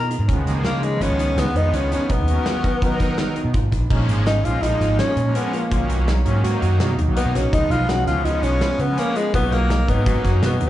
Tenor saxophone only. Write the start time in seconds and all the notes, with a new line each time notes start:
0.66 A#3
0.84 G#3
1.02 C#4
1.39 B3
1.57 D#4
1.75 C#4
1.93 C#4
2.11 B3
4.26 D#4
4.45 F4
4.62 D#4
4.99 C#4
5.35 B3
5.53 A#3
7.17 B3
7.35 C#4
7.53 D#4
7.71 F4
7.89 F#4
8.07 F4
8.25 D#4
8.43 C#4
8.80 B3
8.98 A#3
9.17 G#3
9.34 B3
9.52 A#3
9.89 B3
10.45 B3